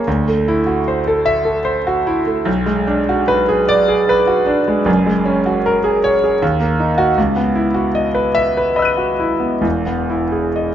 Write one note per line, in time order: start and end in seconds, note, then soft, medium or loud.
0.07 2.44 D2 medium
0.28 0.60 A3 medium
0.48 0.80 E4 medium
0.67 0.99 F#4 medium
0.88 1.20 C5 medium
1.07 1.39 A4 medium
1.26 1.58 E5 medium
1.45 1.78 A4 medium
1.65 1.98 C5 medium
1.87 2.19 F#4 medium
2.07 2.39 E4 medium
2.26 2.47 A3 medium
2.45 4.83 B1 medium
2.66 2.99 G#3 medium
2.87 3.20 D4 medium
3.09 3.41 F#4 medium
3.28 3.60 B4 medium
3.49 3.81 G#4 medium
3.69 4.01 D5 loud
3.88 4.20 G#4 medium
4.09 4.41 B4 medium
4.27 4.60 F#4 medium
4.47 4.79 D4 medium
4.68 4.88 G#3 medium
4.85 6.36 F#1 medium
4.85 6.37 F#2 medium
5.06 5.39 G#3 medium
5.25 5.57 C#4 medium
5.46 5.77 F#4 medium
5.66 5.97 A#4 medium
5.84 6.15 G#4 medium
6.04 6.34 C#5 medium
6.24 6.42 G#4 medium
6.42 7.15 D#2 medium
6.60 6.90 A#3 medium
6.80 7.10 D#4 medium
6.98 7.17 F#4 medium
7.18 9.61 C#2 medium
7.36 7.67 B3 medium
7.55 7.87 E4 medium
7.74 8.06 F#4 medium
7.95 8.27 D#5 medium
8.15 8.48 B4 medium
8.35 8.68 E5 medium
8.57 8.90 B4 medium
8.76 9.11 D#5 medium
8.76 9.60 B5 medium
8.76 9.62 E6 soft
8.82 9.63 F#6 soft
8.82 9.65 D#7 medium
8.97 9.33 F#4 medium
9.19 9.55 E4 medium
9.40 9.64 B3 medium
9.61 10.75 E1 medium
9.61 10.75 E2 medium
9.86 10.23 B3 medium
10.10 10.46 E4 medium
10.32 10.69 G#4 medium
10.56 10.75 D#5 medium